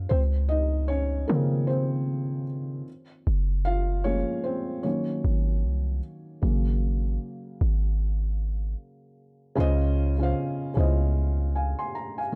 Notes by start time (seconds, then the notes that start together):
Already playing: C#4 F4 C#5 F5
0.09 C#2 C4 C5
0.49 D#4 D#5
0.88 C#4 C#5
1.28 C#3 D#3 F3 A#3 C4 A#4
1.67 C4 C5
3.27 F#1
3.65 F4 F5
4.04 F3 G#3 A#3 C#4 C#5
4.44 C4 C5
4.83 D#3 F#3 A#3 C#4 C#5
5.25 G#1
5.64 C2
6.42 G#1 C#3 F#3 A#3
7.61 G#1
9.55 C#2 C#3 C#4 F4 C5
9.60 D#5
10.18 C#3 C#4 F4 C5
10.23 F5
10.74 C#2 C#3 C#4 E4 C5
10.79 F4 D#5
11.55 F5 G#5
11.79 G#5 C6
11.95 A#5
12.18 F5 G#5
12.32 D#3